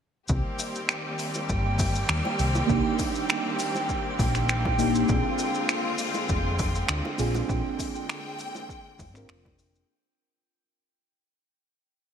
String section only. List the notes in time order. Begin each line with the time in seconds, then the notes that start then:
0.29 D#3 G3 A#3 C4 G4
5.09 D3 G#3 F4
7.50 G5